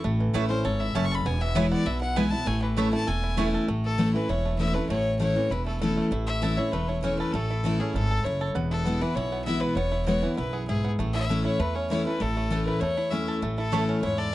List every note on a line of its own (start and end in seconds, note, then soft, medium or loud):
0.00 0.62 A2 medium
0.00 0.23 C#4 medium
0.00 0.35 E4 medium
0.00 0.17 A4 medium
0.04 0.28 A1 loud
0.04 0.47 A3 medium
0.20 1.41 E3 medium
0.34 0.61 A1 medium
0.34 0.49 E3 medium
0.34 0.44 A3 medium
0.34 0.49 A3 loud
0.34 0.50 C#4 loud
0.34 0.44 E4 loud
0.34 0.49 E4 loud
0.34 0.80 E4 medium
0.34 0.44 C#5 loud
0.34 0.44 A5 loud
0.49 0.93 C#4 medium
0.49 0.65 C#4 medium
0.49 0.64 E4 medium
0.49 0.66 C5 loud
0.65 0.91 G#1 medium
0.65 0.94 G#2 medium
0.65 1.08 A4 medium
0.65 0.82 C#5 medium
0.80 1.56 E4 medium
0.80 0.96 E5 loud
0.95 1.21 F#1 medium
0.95 1.24 F#2 medium
0.95 1.04 A3 medium
0.95 1.26 C#4 medium
0.95 1.05 E4 loud
0.95 1.05 C#5 loud
0.95 1.06 A5 loud
0.95 1.05 A5 loud
1.04 1.16 C#6 loud
1.12 1.26 A4 medium
1.12 1.27 B5 loud
1.25 1.73 E1 loud
1.25 1.84 E2 loud
1.25 1.69 B3 medium
1.25 1.43 G#5 loud
1.41 2.62 E3 medium
1.41 1.57 E5 loud
1.55 1.85 E3 loud
1.55 1.85 G#3 loud
1.55 1.65 B3 medium
1.55 1.85 B3 loud
1.55 1.65 E4 loud
1.55 1.86 E4 medium
1.55 1.86 E4 loud
1.55 1.65 B4 loud
1.55 1.70 C#5 loud
1.55 1.65 G#5 loud
1.71 2.14 B3 medium
1.71 1.87 D5 loud
1.86 2.33 B1 medium
1.86 2.44 B2 loud
1.86 2.02 E4 medium
1.86 2.00 E5 loud
2.01 2.32 E4 medium
2.01 2.18 F#5 loud
2.16 2.32 E3 medium
2.16 2.32 G#3 medium
2.16 2.26 B3 medium
2.16 2.47 B3 medium
2.16 2.32 B3 medium
2.16 2.26 E4 medium
2.16 2.31 E4 loud
2.16 2.26 B4 loud
2.16 2.32 G#5 loud
2.16 2.26 G#5 medium
2.30 2.48 B3 medium
2.30 2.46 E4 medium
2.30 2.77 E4 medium
2.30 2.48 A5 loud
2.46 2.94 A1 medium
2.46 3.05 A2 medium
2.46 2.90 A3 medium
2.46 2.62 G#5 loud
2.62 3.05 E3 medium
2.62 2.79 B4 medium
2.76 2.92 E3 medium
2.76 2.92 A3 loud
2.76 2.87 A3 loud
2.76 2.93 C#4 loud
2.76 3.20 E4 medium
2.76 2.87 E4 medium
2.76 2.91 E4 loud
2.76 2.87 C#5 loud
2.76 2.92 E5 loud
2.76 2.87 A5 loud
2.92 3.35 A3 medium
2.92 3.08 C#4 medium
2.92 3.07 E4 medium
2.92 3.09 A5 loud
3.07 3.55 E1 medium
3.07 3.66 E2 medium
3.07 3.50 A4 medium
3.07 3.61 G#5 loud
3.24 3.66 E4 medium
3.37 3.67 E3 medium
3.37 3.47 A3 medium
3.37 3.67 A3 loud
3.37 3.67 A3 medium
3.37 3.67 C#4 loud
3.37 3.47 E4 medium
3.37 3.68 E4 medium
3.37 3.47 C#5 medium
3.37 3.48 A5 loud
3.54 3.69 A4 medium
3.68 4.16 A1 medium
3.68 4.27 A2 medium
3.68 3.99 A3 medium
3.84 4.13 A4 medium
3.98 4.14 E3 medium
3.98 4.14 A3 loud
3.98 4.45 A3 medium
3.98 4.14 C#4 medium
3.98 4.13 E4 loud
4.14 5.36 E3 medium
4.14 4.30 C#4 medium
4.14 4.29 E4 medium
4.14 4.31 B4 medium
4.29 4.76 E1 medium
4.29 4.87 E2 medium
4.29 4.60 E4 medium
4.29 4.58 C#5 medium
4.45 4.75 A3 medium
4.59 4.75 E3 medium
4.59 4.75 A3 medium
4.59 4.75 C#4 medium
4.59 5.51 E4 medium
4.59 4.74 E4 medium
4.59 4.75 E5 medium
4.74 4.90 A3 medium
4.74 4.91 C#4 soft
4.74 4.90 E4 medium
4.74 4.89 B4 medium
4.89 5.37 A1 medium
4.89 5.48 A2 medium
4.89 5.20 A3 medium
4.89 5.18 C#5 medium
5.19 5.35 E3 loud
5.19 5.66 A3 medium
5.19 5.36 A3 medium
5.19 5.36 C#4 loud
5.19 5.35 E4 loud
5.19 5.52 C#5 medium
5.36 6.77 E3 medium
5.36 5.52 C#4 medium
5.36 5.50 E4 medium
5.50 5.98 E1 medium
5.50 5.81 E4 medium
5.50 5.66 B4 medium
5.66 5.97 A3 medium
5.66 5.80 A4 medium
5.81 6.11 E3 medium
5.81 6.11 A3 medium
5.81 6.11 C#4 medium
5.81 6.12 E4 medium
5.81 6.12 E4 loud
5.81 6.03 A4 medium
5.97 6.28 A3 medium
6.11 6.58 A1 medium
6.11 6.70 A2 medium
6.11 6.58 E4 medium
6.27 6.70 A3 medium
6.27 6.58 E5 medium
6.42 6.57 E3 medium
6.42 6.57 A3 medium
6.42 6.58 C#4 medium
6.42 6.56 E4 loud
6.42 6.86 A4 medium
6.57 6.73 C#4 medium
6.57 6.72 E4 medium
6.57 6.89 E4 medium
6.57 6.73 C#5 medium
6.72 7.20 E1 medium
6.72 7.31 E2 medium
6.72 7.16 A3 medium
6.72 6.89 B4 medium
6.88 7.50 E4 medium
6.88 7.02 C#5 medium
7.02 7.32 E3 medium
7.02 7.33 A3 medium
7.02 7.47 C#4 medium
7.02 7.33 C#4 medium
7.02 7.33 E4 medium
7.02 7.17 C#5 medium
7.19 7.62 A4 medium
7.19 7.34 B4 medium
7.32 7.81 A1 medium
7.32 7.92 A2 medium
7.32 7.64 A3 medium
7.32 7.81 A4 medium
7.51 7.95 E4 medium
7.64 7.79 E3 medium
7.64 7.80 A3 medium
7.64 8.08 A3 medium
7.64 7.80 C#4 medium
7.64 7.79 E4 loud
7.79 8.23 C#4 medium
7.79 7.95 C#4 medium
7.79 7.94 E4 medium
7.79 7.94 G#4 medium
7.94 8.20 G#1 medium
7.94 8.24 G#2 medium
7.94 8.25 E4 medium
7.94 8.26 A4 medium
8.11 8.40 A4 medium
8.24 8.51 F#1 medium
8.24 8.55 F#2 medium
8.24 8.71 E4 medium
8.24 8.48 C#5 medium
8.41 8.56 A4 medium
8.55 9.02 E1 medium
8.55 9.14 E2 medium
8.55 8.85 B3 medium
8.71 9.16 E4 medium
8.71 9.03 A4 medium
8.85 9.01 E3 medium
8.85 9.01 G#3 medium
8.85 9.29 B3 medium
8.85 9.02 B3 medium
8.85 9.00 E4 loud
9.01 10.23 E3 medium
9.01 9.17 B3 medium
9.01 9.16 E4 medium
9.01 9.16 B4 medium
9.14 9.63 B1 medium
9.14 9.75 B2 medium
9.14 9.47 E4 medium
9.14 9.44 C#5 medium
9.32 9.62 B3 medium
9.45 9.76 E3 medium
9.45 9.76 G#3 medium
9.45 9.76 B3 medium
9.45 9.91 E4 medium
9.45 9.77 E4 medium
9.45 9.61 E5 loud
9.60 9.76 B3 medium
9.60 9.76 B4 medium
9.75 10.23 E1 medium
9.75 10.35 E2 medium
9.75 10.06 B3 medium
9.75 10.05 C#5 loud
9.92 10.37 E4 medium
10.05 10.22 E3 medium
10.05 10.23 G#3 medium
10.05 10.51 B3 medium
10.05 10.23 B3 loud
10.05 10.21 E4 loud
10.05 10.35 C#5 medium
10.22 11.63 E3 medium
10.22 10.38 B3 medium
10.22 10.37 E4 medium
10.36 10.85 B1 medium
10.36 10.67 F#2 medium
10.36 10.68 E4 medium
10.36 10.55 B4 medium
10.53 10.83 B3 medium
10.53 10.67 G#4 medium
10.68 10.98 G#2 medium
10.68 11.15 E4 medium
10.68 10.90 G#4 medium
10.85 10.99 B3 medium
10.99 11.46 A1 medium
10.99 11.57 A2 medium
10.99 11.30 A3 medium
11.13 11.44 E4 medium
11.13 11.42 E5 loud
11.29 11.58 E3 medium
11.29 11.59 A3 medium
11.29 11.59 C#4 loud
11.29 11.60 E4 loud
11.45 11.91 E4 medium
11.45 11.61 C#5 loud
11.59 12.07 E2 medium
11.59 12.18 E2 medium
11.59 12.07 A3 medium
11.59 11.76 B4 medium
11.75 13.12 C#4 medium
11.75 11.89 C#5 medium
11.90 12.05 E3 medium
11.90 12.06 A3 medium
11.90 12.06 C#4 medium
11.90 12.22 E4 medium
11.90 12.04 E4 medium
11.90 12.05 C#5 medium
12.05 12.37 A3 medium
12.05 12.21 C#4 soft
12.05 12.20 E4 medium
12.05 12.22 B4 medium
12.20 12.68 A1 medium
12.20 12.78 A2 medium
12.20 12.67 E4 medium
12.20 12.65 A4 medium
12.37 12.79 A3 medium
12.50 12.80 E3 medium
12.50 12.80 A3 medium
12.50 12.80 C#4 loud
12.50 12.81 E4 loud
12.50 12.95 A4 medium
12.64 12.67 A#4 medium
12.64 12.82 B4 medium
12.68 12.97 E4 medium
12.81 13.39 E2 medium
12.81 13.28 E2 medium
12.81 13.25 A3 medium
12.81 13.12 C#5 loud
12.97 13.58 E4 medium
13.10 13.41 E3 medium
13.10 13.41 A3 medium
13.10 13.55 C#4 medium
13.10 13.42 C#4 medium
13.10 13.42 E4 medium
13.10 13.34 E5 loud
13.28 13.70 A4 medium
13.42 13.89 A1 medium
13.42 14.00 A2 medium
13.42 13.71 A3 medium
13.57 14.03 E4 medium
13.57 14.00 A4 medium
13.72 14.01 E3 medium
13.72 13.82 A3 loud
13.72 14.02 A3 medium
13.72 14.16 A3 medium
13.72 14.02 C#4 medium
13.72 13.82 E4 medium
13.72 14.03 E4 loud
13.72 13.82 C#5 medium
13.72 13.82 A5 medium
13.89 14.31 C#4 medium
14.02 14.35 E2 medium
14.02 14.32 G#2 medium
14.02 14.33 E4 medium
14.02 14.19 C#5 medium
14.18 14.35 A4 medium
14.18 14.35 D5 medium